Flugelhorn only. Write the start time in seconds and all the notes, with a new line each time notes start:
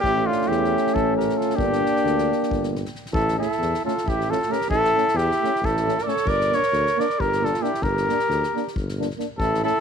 0.00 G4
0.27 F4
0.48 G4
0.94 A4
1.17 A#4
1.37 A4
1.56 G4
3.14 A4
3.39 A4
3.85 A4
4.09 G4
4.30 A4
4.52 A#4
4.70 A4
5.17 G4
5.65 A4
6.03 D5
6.09 C#5
6.29 D5
6.55 C#5
7.00 D5
7.21 A#4
7.45 A4
7.62 G4
7.83 A#4
9.38 A4
9.65 A4